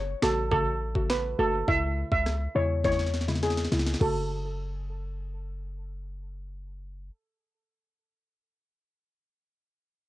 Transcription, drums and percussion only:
0.22 finger snap, snare
0.51 kick
0.95 kick
1.10 finger snap, snare
1.68 kick
2.12 kick
2.26 cross-stick, snare
2.84 kick, snare
2.92 snare
2.99 snare
3.06 snare
3.14 snare
3.21 snare
3.28 snare
3.35 snare
3.43 snare
3.50 snare
3.57 snare
3.65 snare
3.72 snare
3.79 snare
3.87 snare
3.94 snare
4.01 kick, crash

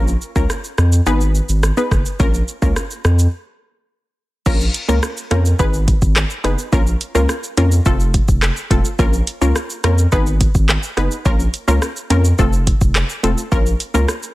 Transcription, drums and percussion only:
0.08 shaker
0.22 shaker
0.36 kick, shaker
0.50 cross-stick, shaker
0.64 shaker
0.78 cross-stick, shaker
0.92 shaker
1.06 shaker
1.21 shaker
1.35 shaker
1.49 shaker
1.63 cross-stick, shaker
1.77 shaker
1.91 kick, cross-stick, shaker
2.06 shaker
2.20 kick, shaker
2.34 shaker
2.48 shaker
2.62 kick, shaker
2.76 cross-stick, shaker
2.91 shaker
3.05 cross-stick, shaker
3.19 shaker
4.46 kick, crash, shaker
4.60 shaker
4.74 closed hi-hat, shaker
4.89 shaker
5.03 cross-stick, shaker
5.17 shaker
5.31 cross-stick, closed hi-hat, shaker
5.45 shaker
5.59 kick, shaker
5.74 shaker
5.88 kick, closed hi-hat, shaker
6.02 kick, shaker
6.16 cross-stick, clap, shaker
6.30 shaker
6.44 cross-stick, closed hi-hat, shaker
6.59 shaker
6.73 kick, shaker
6.87 shaker
7.01 closed hi-hat, shaker
7.15 shaker
7.29 cross-stick, shaker
7.43 shaker
7.57 closed hi-hat, shaker
7.72 shaker
7.86 kick, shaker
8.00 shaker
8.14 kick, closed hi-hat, shaker
8.28 kick, shaker
8.42 cross-stick, clap, shaker
8.56 shaker
8.71 kick, closed hi-hat, shaker
8.85 shaker
8.99 kick, shaker
9.13 shaker
9.27 closed hi-hat, shaker
9.42 shaker
9.56 cross-stick, shaker
9.70 shaker
9.84 cross-stick, closed hi-hat, shaker
9.98 shaker
10.12 kick, shaker
10.26 shaker
10.41 kick, closed hi-hat, shaker
10.55 kick, shaker
10.69 cross-stick, clap, shaker
10.83 shaker
10.97 cross-stick, closed hi-hat, shaker
11.11 shaker
11.25 kick, shaker
11.40 shaker
11.54 closed hi-hat, shaker
11.68 shaker
11.82 cross-stick, shaker
11.96 shaker
12.10 closed hi-hat, shaker
12.25 shaker
12.39 kick, shaker
12.53 shaker
12.67 kick, closed hi-hat, shaker
12.81 kick, shaker
12.95 cross-stick, clap, shaker
13.09 shaker
13.24 closed hi-hat, shaker
13.38 shaker
13.52 kick, shaker
13.66 shaker
13.80 closed hi-hat, shaker
13.95 shaker
14.08 cross-stick, shaker
14.23 shaker

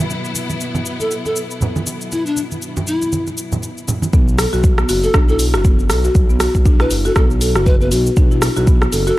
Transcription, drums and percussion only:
0.10 muted conga, shaker
0.25 shaker
0.35 muted conga, shaker
0.50 high conga, shaker
0.61 shaker
0.75 muted conga, high conga, shaker
0.86 shaker
1.00 muted conga, shaker
1.11 shaker
1.26 muted conga, shaker
1.36 shaker
1.51 shaker
1.61 muted conga, high conga, low conga, shaker
1.76 high conga, shaker
1.87 muted conga, shaker
2.01 shaker
2.12 muted conga, shaker
2.26 shaker
2.37 muted conga, shaker
2.52 high conga, shaker
2.62 shaker
2.77 muted conga, high conga, shaker
2.87 shaker
3.02 muted conga, shaker
3.13 high conga, shaker
3.27 muted conga, shaker
3.38 shaker
3.52 high conga, low conga, shaker
3.62 muted conga, shaker
3.78 shaker
3.88 muted conga, high conga, low conga, shaker
4.02 high conga, shaker
4.13 kick, shaker
4.28 shaker
4.39 cross-stick, open hi-hat, shaker
4.53 shaker
4.64 kick, shaker
4.78 cross-stick, shaker
4.89 open hi-hat, shaker
5.03 shaker
5.14 kick, cross-stick, shaker
5.29 shaker
5.39 open hi-hat, shaker
5.54 cross-stick, shaker
5.65 kick, shaker
5.79 shaker
5.90 cross-stick, open hi-hat, shaker
6.04 shaker
6.15 kick, shaker
6.30 shaker
6.40 cross-stick, open hi-hat, shaker
6.55 kick, shaker
6.66 kick, shaker
6.80 cross-stick, shaker
6.91 open hi-hat, shaker
7.05 shaker
7.16 kick, cross-stick, shaker
7.31 shaker
7.41 open hi-hat, shaker
7.56 cross-stick, shaker
7.66 kick, shaker
7.81 shaker
7.91 open hi-hat, shaker
8.06 shaker
8.17 kick, shaker
8.31 shaker
8.42 cross-stick, open hi-hat, shaker
8.57 shaker
8.67 kick, shaker
8.82 cross-stick, shaker
8.92 open hi-hat, shaker
9.07 shaker

